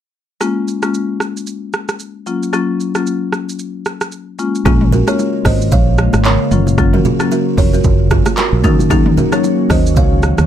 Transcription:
0.41 G#3 A#3 C#4 F4, cross-stick, shaker
0.68 shaker
0.82 G#3 A#3 C#4 F4, cross-stick, shaker
0.94 shaker
1.20 cross-stick, shaker
1.37 shaker
1.47 shaker
1.73 cross-stick, shaker
1.89 cross-stick, shaker
1.99 shaker
2.26 F#3 A#3 C#4 F4, shaker
2.43 shaker
2.53 F#3 A#3 C#4 F4, cross-stick, shaker
2.80 shaker
2.95 F#3 A#3 C#4 F4, cross-stick, shaker
3.07 shaker
3.33 cross-stick, shaker
3.49 shaker
3.59 shaker
3.85 cross-stick, shaker
4.01 cross-stick, shaker
4.12 shaker
4.39 G#3 A#3 C#4 F4, shaker
4.55 shaker
4.65 A#1 C#3 G#3 A#3 C#4 F4 G#4, kick, cross-stick, low conga, shaker
4.81 mid tom
4.92 F#4 A#4, low conga, shaker
5.07 G#3 A#3 C#4 F4 A#4 C#5, cross-stick, shaker
5.19 high bongo, shaker
5.45 G#1 C5 D#5, kick, cross-stick, open hi-hat, low bongo, shaker
5.62 shaker
5.71 A#1 C#5 F5, kick, low conga, shaker
5.98 cross-stick, shaker
6.13 G#1, cross-stick, low bongo, shaker
6.24 A#4 C#5, clap, high bongo, shaker
6.51 F#1 F#3 A#3 C#4 F4, mid tom, shaker
6.67 high bongo, low bongo, shaker
6.78 F#3 A#3 C#4 F4, kick, cross-stick, low conga, shaker
6.93 F#4 A#4, mid tom
7.05 F4 G#4, low conga, shaker
7.20 F#3 A#3 C#4 F4, cross-stick, shaker
7.31 F#4 A#4, high bongo, shaker
7.57 F1 A#4 C#5, kick, open hi-hat, low bongo, shaker
7.74 F#4 A#4, shaker
7.84 F#1, kick, low conga, shaker
8.10 F4 G#4, kick, cross-stick, shaker
8.26 cross-stick, low bongo, shaker
8.37 F#4 A#4, clap, high bongo, shaker
8.53 A#1
8.64 D#2 D#3 F#3 A#3 C#4 D#4 F#4 A#4, kick, mid tom, shaker
8.79 high bongo, low bongo, shaker
8.90 F#3 A#3 C#4 D#4 G#4, kick, cross-stick, low conga, shaker
9.06 mid tom
9.17 F#4 A#4, low conga, shaker
9.32 F#3 A#3 C#4 D#4 A#4 C#5, cross-stick, shaker
9.44 high bongo, shaker
9.70 D#2 C5 D#5, kick, cross-stick, open hi-hat, low bongo, shaker
9.86 shaker
9.96 C#2 C#5 F5, kick, low conga, shaker
10.23 cross-stick, shaker
10.38 D#2, cross-stick, low bongo, shaker

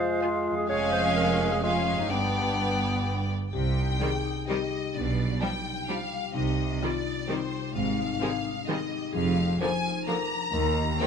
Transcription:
Already playing: F2 G#3 C4 F4 G#4 C5 F5
0.22 F4 F5 G#5
0.51 F2
0.55 C#4 G#4
0.60 F4
0.64 C#4 G#4
0.69 F1 F2 G#3 C#4 C#5 F5 G#5
0.92 C5
1.16 A#4
1.52 G#4
1.63 G#3 C#4 F4 F5 G#5
1.87 G#3
1.92 G2
1.97 B3 D#4
2.01 D4
2.06 G4
2.10 G1 G2 G3 B3 D4 D5 G5
3.53 C2 C3 G4 G5
3.77 D#4
4.00 D#3 G3 C4 D4 G#4
4.24 D#4
4.47 D#3 G3 C4 G4 D#5
4.71 G4
4.94 B1 B2 D4 D5
5.18 F4
5.41 F3 G3 D4 D#4 G5
5.65 F4
5.88 F3 G3 D4 F5
6.11 G4
6.34 C2 C3 D#4 D#5
6.58 D#4
6.81 D#3 G3 C4 D4 F4 D5
7.05 D#4
7.28 D#3 G3 C4 D#4 C5
7.51 G4
7.74 G#1 G#2 C4 F5
7.98 D#4
8.21 D#3 G3 G#3 C4 D4
8.45 D#4
8.68 D#3 G3 G#3 C4 D#5
8.91 G4
9.13 F1 F2 F3 G#4 F5
9.38 F4
9.60 D3 F3 A#3 D#4 C5 G#5
9.85 F4
10.07 D3 F3 A#3 D4 A#4 A#5
10.31 A#4
10.53 D#2 D#3 A#4
10.78 G4
11.00 D#3 G3 A#3 D#4 F4 C5 G5

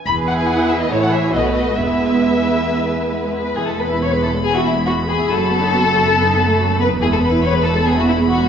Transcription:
0.07 E1 E2 E3 E4 G#4 B4 B5
0.28 F#5
0.39 G#5
0.49 F#5
0.69 E5
0.80 D#5
0.90 A1 A2 E3 E4 A4 C#5
1.01 F#5
1.12 G#4 E5
1.33 B1 B2 A3 B3 F#4 B4 D#5
1.45 C#5
1.54 D#5
1.78 E1 E2 G#3 B3 E4 B4 E5
3.34 B4
3.56 E1 E2 E3 G#3 G#4 B5
3.67 G#3 A4
3.79 B3 B4
3.89 E4
4.00 B3 C#5
4.12 G#3 B4
4.22 E3 A4
4.33 G#3
4.44 B3 G#4
4.55 E4 F#4
4.65 B3 E4
4.76 G#3
4.87 E3 F#4
4.97 G#3
5.08 B3 G#4
5.19 E4
5.29 F#1 F#2 F#3 A4
5.40 A3
5.51 B3
5.62 D#4
5.73 B3
5.84 A3
5.94 F#3
6.05 A3
6.16 B3
6.26 D#4
6.36 B3
6.48 A3
6.58 F#3
6.69 A3
6.79 B3 B4
6.90 D#4
7.00 E1 E2 E3 G#3 G#4 B5
7.12 G#3 A4
7.22 B3 B4
7.34 E4
7.43 B3 C#5
7.54 G#3 B4
7.64 E3 A4
7.76 G#3
7.87 B3 G#4
7.98 E4 F#4
8.08 B3 E4
8.19 G#3
8.29 E3 F#4
8.39 G#3

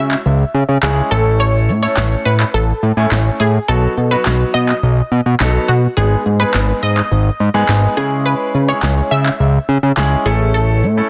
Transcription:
Already playing: C#3 G#3 C#4 E4 F#4 E5
0.11 clap
0.26 C#2
0.54 C#3
0.69 C#3
0.83 C#2 G#3 C#4 E4 G#4, snare, clap
1.11 A1 A3 C#4 E4 A4
1.40 C#5
1.69 A2
1.83 A3 C#4 E4 A4 C#5
1.97 A1, snare, clap
2.25 A2 B4
2.40 clap
2.54 A1 A4
2.83 A2
2.97 A2 A3 C#4 E4 G#5
3.11 A1, snare, clap
3.40 A2 G#4
3.68 B1 F#3 B3 D#4 F#4 A4
3.97 B2
4.11 F#3 B3 D#4 F#4 B4
4.26 B1, snare, clap
4.54 B2 D#5
4.69 clap
4.83 B1
5.12 B2
5.26 B2
5.40 B1 F#3 B3 D#4 A4, snare, clap
5.68 B2 F#4
5.97 G#1 G#3 B3 D#4 G#4
6.26 G#2
6.40 G#3 B3 D#4 G#4 B4
6.54 G#1, snare, clap
6.83 G#2 D#5
6.97 clap
7.12 G#1
7.40 G#2
7.54 G#2 G#3 B3 D#4 G#4
7.69 G#1, snare, clap
7.97 C#3 G#3 C#4 E4 G#4
8.26 B4
8.55 C#3
8.68 G#3 C#4 E4 G#4 C#5
8.83 C#2, snare, clap
9.11 C#3 E5
9.26 clap
9.40 C#2
9.69 C#3
9.83 C#3
9.97 C#2 G#3 C#4 E4 G#4, snare, clap
10.26 A1 A3 C#4 E4 G#4 A4
10.54 A4
10.83 A2
10.97 A3 C#4 E4 A4

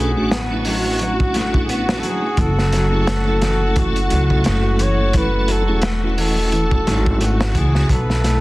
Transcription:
Already playing: B1 A3 C#4 D4 F#4 A4
0.00 G#4
0.16 A1 A3 C#4 D4 F#4
0.31 B3, snare, closed hi-hat
0.51 A3 C#4 D4 E4
0.65 F#3 F#4, open hi-hat
0.99 F#3, closed hi-hat
1.20 kick
1.34 A3, snare, closed hi-hat
1.54 kick
1.64 G#4
1.69 B3 F#4, closed hi-hat
1.89 snare
1.99 A4
2.03 F#3 G#4, closed hi-hat
2.37 F#1 E3 A4, kick, closed hi-hat
2.59 snare
2.72 F#3, snare, closed hi-hat
2.92 A3 C#4 E4 G#4
3.07 A3, snare, closed hi-hat
3.26 A3 C#4 E4 A4
3.42 E3, snare, closed hi-hat
3.76 E3 F#4, kick, closed hi-hat
3.96 closed hi-hat
4.10 C#2 F#3, closed hi-hat
4.30 kick
4.44 F#1 A3, snare, closed hi-hat
4.79 E3 C#5, closed hi-hat
5.13 E3 B4, kick, closed hi-hat
5.48 F#3 A4, closed hi-hat
5.68 E1 A3 C#4 E4 G#4
5.82 A3, snare, closed hi-hat
6.02 A3 C#4 E4 F#4
6.17 E3 A4, open hi-hat
6.52 E3, closed hi-hat
6.71 kick
6.87 G#1 F#3, snare, closed hi-hat
7.06 kick
7.21 A3 F#4, closed hi-hat
7.41 snare
7.55 C#2 E3 G#4, kick, closed hi-hat
7.75 snare
7.89 B1 F#3 B3 E4 A4 B4, kick, closed hi-hat
8.10 snare
8.24 A3, snare, closed hi-hat

